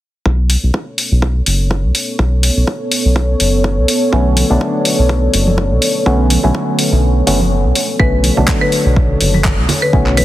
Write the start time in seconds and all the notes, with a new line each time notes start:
0.26 B1 B3 A4 C#5, kick
0.50 open hi-hat
0.63 B1
0.74 kick
0.98 open hi-hat
1.12 B1
1.22 kick
1.46 F#1, open hi-hat
1.71 kick
1.84 B1
1.95 open hi-hat
2.19 B1, kick
2.43 open hi-hat
2.57 B1
2.67 kick
2.92 open hi-hat
3.05 B1
3.16 kick
3.40 F#1, open hi-hat
3.64 kick
3.78 B1
3.88 open hi-hat
4.12 B1 D3 F#3 A3 B3 C#4, kick
4.37 open hi-hat, high conga
4.50 B1 D3 F#3 A3 B3 D4
4.61 kick
4.85 open hi-hat
4.99 B1
5.09 kick
5.34 F#1, open hi-hat
5.47 high conga
5.58 kick
5.71 B1
5.82 open hi-hat
6.06 B1 D3 F#3 A3 B3 C#4, kick
6.30 open hi-hat, high conga
6.43 B1 D3 F#3 A3 B3 C#4
6.55 kick
6.79 open hi-hat
6.92 B1
7.27 F#1 D3 F#3 A3 B3 C#4, open hi-hat
7.41 high conga
7.65 B1
7.75 open hi-hat
7.99 B1 D3 F#3 A3 B3 C#4 A4 B4 C#5, kick
8.24 open hi-hat, high conga
8.37 B1 D3 F#3 A3 B3 D4, low conga
8.48 kick, clap
8.61 B4
8.72 open hi-hat
8.86 B1
8.96 kick
9.21 F#1, open hi-hat
9.34 high conga
9.44 kick, clap
9.58 B1
9.69 open hi-hat, low conga
9.82 B4
9.93 B1 D3 F#3 A3 B3 C#4, kick
10.06 clap
10.17 B4, open hi-hat, high conga